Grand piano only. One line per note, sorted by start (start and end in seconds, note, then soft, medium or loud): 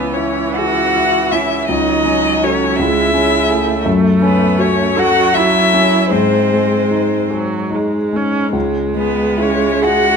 0.00 1.66 C#2 soft
0.00 0.41 C#4 soft
0.17 0.81 E4 soft
0.58 1.18 G#4 soft
0.97 1.55 E4 soft
1.32 1.69 C#4 soft
1.69 2.75 C#2 soft
2.05 2.64 C#4 soft
2.43 2.75 F#4 soft
2.43 2.76 A4 soft
2.79 3.83 C#2 soft
3.14 3.71 C#4 soft
3.50 3.83 E4 soft
3.50 3.83 G#4 soft
3.86 6.08 F#2 medium
4.22 4.82 C#4 soft
4.58 5.19 F#4 soft
4.96 5.57 A4 soft
5.34 5.96 F#4 soft
5.74 6.13 C#4 soft
6.11 8.50 G#2 soft
6.51 7.15 G#3 soft
6.91 7.56 D#4 soft
7.31 7.97 G#4 soft
7.70 8.37 D#4 soft
8.13 8.54 G#3 soft
8.53 10.17 C#2 soft
8.94 9.65 G#3 soft
9.38 10.06 E4 soft
9.82 10.17 G#4 soft